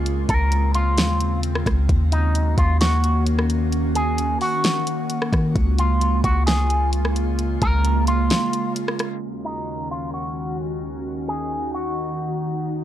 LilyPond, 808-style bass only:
\new Staff \with { instrumentName = "808-style bass" } { \clef bass \time 4/4 \key ees \dorian \tempo 4 = 131 des,8 des,4. ees,4. des,8 | ees,4. ees,2~ ees,8~ | ees,4. r2 ees8 | des,4. des,2~ des,8~ |
des,8 des,4. r2 | r1 | r1 | }